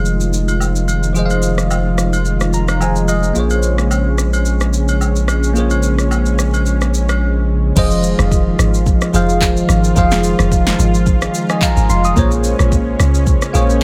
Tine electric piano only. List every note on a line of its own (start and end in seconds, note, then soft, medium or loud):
0.00 1.11 F3 medium
0.00 1.11 F4 medium
0.00 1.12 G#4 medium
0.00 1.13 C5 medium
0.00 1.14 D#5 medium
1.13 2.76 F3 medium
1.13 2.77 F4 medium
1.13 2.78 G#4 medium
1.17 2.78 C5 medium
1.17 1.25 D#5 medium
1.26 2.83 F5 medium
2.54 2.79 A#5 medium
2.80 3.35 F3 medium
2.80 3.34 F4 soft
2.80 3.35 G#4 soft
2.80 3.37 C5 medium
2.80 3.08 D#5 medium
2.80 3.07 G#5 medium
3.09 3.34 D#5 medium
3.33 5.51 A#3 medium
3.33 5.52 F4 medium
3.33 5.52 G#4 medium
3.38 5.53 C5 medium
3.38 5.54 C#5 medium
5.54 7.71 A#3 medium
5.54 7.72 F4 medium
5.54 7.73 G#4 medium
5.58 7.73 C5 medium
5.58 7.74 C#5 medium
7.76 8.65 F3 medium
7.76 8.65 F4 medium
7.76 8.65 G#4 medium
7.76 8.66 C5 medium
7.76 8.66 D#5 loud
9.13 9.81 F3 medium
9.13 9.81 F4 medium
9.13 9.81 G#4 medium
9.13 9.82 C5 medium
9.13 9.82 F5 loud
9.96 10.85 F3 medium
9.96 10.85 F4 medium
9.96 10.85 G#4 medium
9.96 10.86 C5 medium
9.96 10.86 F5 loud
11.50 11.62 D#5 medium
11.50 11.61 G#5 medium
11.62 11.88 F5 medium
11.62 11.88 A#5 medium
11.90 12.04 F5 medium
11.90 12.04 C6 medium
12.05 12.31 A#5 medium
12.05 12.31 D#6 medium
12.16 13.05 A#3 medium
12.16 13.05 F4 medium
12.16 13.06 G#4 medium
12.16 13.06 C5 medium
12.16 13.06 C#5 loud
13.53 13.83 A#3 medium
13.53 13.83 F4 medium
13.53 13.83 G#4 medium
13.53 13.83 C5 medium
13.53 13.83 C#5 loud